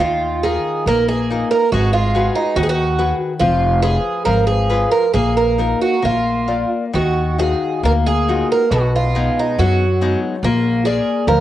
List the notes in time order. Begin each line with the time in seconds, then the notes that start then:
0.00 D#2 D#3 F4
0.43 D#4 F4 G#4 A#4
0.86 A#1 A#3 A#4
1.08 G#4
1.30 D#4 F4 A#4
1.51 A#4
1.72 G#1 G#3 F#4
1.93 F4
2.15 F#4 G#4 B4
2.35 D#4
2.56 D#2 D#3 F#4
2.63 G#4
2.69 F#4
2.99 F#4 G#4 B4
3.40 F1 F3 F4
3.83 F4 G#4 B4
4.25 G#1 F3 A#4
4.47 G#4
4.69 F4 G#4 B4
4.91 A#4
5.14 A#1 A#3 G#4
5.37 A#4
5.58 D#4 F4 A#4
5.82 F#4
6.02 A#1 A#3 F4
6.48 F4 A#4 D5
6.93 D#2 D#3 F#4
7.39 D#4 F4 F#4 G#4
7.83 D2 A#3 A#4
8.07 G#4
8.29 D#4 F4 F#4
8.52 A#4
8.71 B1 B2 F#4
8.96 F4
9.15 G#3 B3 D#4
9.39 D#4
9.58 F#2 F#3 F#4
10.01 G#3 B3 D#4
10.43 A#1 A#3 F4
10.85 G#4 A#4 D5
11.27 D2 F3 A#4